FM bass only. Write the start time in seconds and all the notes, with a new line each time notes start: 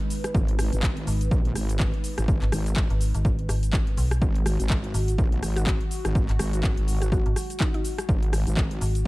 1.07 G#1
2.42 G#1
2.90 G#1
3.14 G#1
3.49 G#1
3.97 B1
4.94 G#1
6.29 G#1
7.26 G#1
8.81 G#1